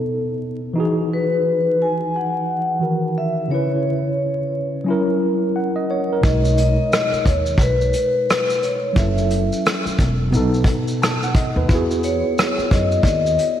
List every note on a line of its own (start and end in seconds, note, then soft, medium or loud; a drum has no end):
0.00 0.75 B2 medium
0.00 0.76 B3 medium
0.00 0.74 D#4 soft
0.00 0.40 A4 medium
0.00 0.78 A4 medium
0.73 2.76 E3 medium
0.73 2.77 D#4 medium
0.78 2.78 F#4 medium
0.78 2.79 G#4 medium
1.13 1.83 B4 medium
1.82 2.16 G#5 medium
2.16 2.79 F#5 medium
2.79 3.49 D#3 soft
2.79 3.49 E3 soft
2.79 3.50 F#4 soft
2.79 3.51 A#4 soft
3.18 3.52 E5 medium
3.48 4.83 C#3 medium
3.48 4.84 C#4 medium
3.48 4.15 C#5 medium
3.52 4.85 E4 medium
3.52 4.86 B4 medium
4.84 6.19 F#3 medium
4.84 6.20 C#4 medium
4.84 6.21 E4 medium
4.90 5.55 A#4 medium
5.56 5.76 F#5 medium
5.76 5.88 D#5 medium
5.90 6.21 C#5 medium
5.90 6.10 C#5 medium
6.12 6.44 A#4 medium
6.21 6.75 B1 medium
6.21 8.91 B2 medium
6.21 8.92 G#3 medium
6.21 6.58 D#5 medium
6.21 kick loud
6.21 shaker medium
6.25 8.93 D#4 medium
6.25 8.94 C#5 medium
6.45 shaker soft
6.58 7.22 D#5 medium
6.58 closed hi-hat medium
6.58 shaker soft
6.93 cross-stick loud
6.93 shaker medium
7.13 muted upright bass stroke soft
7.13 shaker soft
7.26 7.57 D#2 medium
7.26 7.61 C#5 medium
7.26 kick medium
7.26 closed hi-hat medium
7.26 shaker soft
7.46 shaker soft
7.58 7.91 B1 medium
7.58 8.66 B4 medium
7.58 kick medium
7.58 shaker medium
7.81 shaker soft
7.93 closed hi-hat medium
7.93 shaker soft
8.30 cross-stick loud
8.30 shaker medium
8.50 shaker soft
8.63 8.98 C#5 medium
8.63 closed hi-hat medium
8.63 shaker soft
8.93 9.48 F#1 loud
8.93 10.28 F#3 medium
8.93 10.29 C#4 medium
8.93 kick loud
8.93 shaker medium
8.97 10.30 E4 medium
8.97 10.31 A4 medium
8.97 9.61 E5 loud
9.18 shaker soft
9.31 closed hi-hat medium
9.31 shaker soft
9.53 shaker medium
9.66 cross-stick loud
9.66 shaker medium
9.86 muted upright bass stroke soft
9.86 shaker soft
9.99 10.34 E1 loud
9.99 kick medium
9.99 closed hi-hat medium
9.99 shaker soft
10.30 10.64 B1 loud
10.30 11.65 B2 medium
10.30 11.66 B3 medium
10.30 shaker medium
10.35 11.67 D#4 medium
10.35 11.68 A4 medium
10.54 shaker soft
10.64 kick loud
10.64 closed hi-hat medium
10.64 shaker soft
10.88 shaker soft
11.02 11.21 A5 medium
11.02 cross-stick loud
11.02 shaker medium
11.23 11.35 F#5 medium
11.23 shaker soft
11.35 11.56 D#5 medium
11.35 kick loud
11.35 closed hi-hat medium
11.35 shaker soft
11.56 11.68 D#2 loud
11.56 11.89 B4 medium
11.69 12.21 E2 loud
11.69 13.60 B3 medium
11.69 13.60 E4 medium
11.69 kick loud
11.69 shaker medium
11.73 13.60 F#4 medium
11.73 13.60 G#4 medium
11.91 shaker soft
12.04 12.68 C#5 medium
12.04 closed hi-hat medium
12.04 shaker soft
12.38 cross-stick loud
12.38 shaker medium
12.58 muted upright bass stroke soft
12.58 shaker medium
12.71 13.03 F#2 medium
12.71 13.02 D#5 loud
12.71 kick medium
12.71 closed hi-hat medium
12.71 shaker soft
12.92 shaker soft
13.01 13.36 D#2 medium
13.01 13.06 D5 medium
13.01 kick medium
13.07 13.60 D#5 loud
13.07 shaker medium
13.26 shaker soft
13.39 closed hi-hat medium
13.39 shaker medium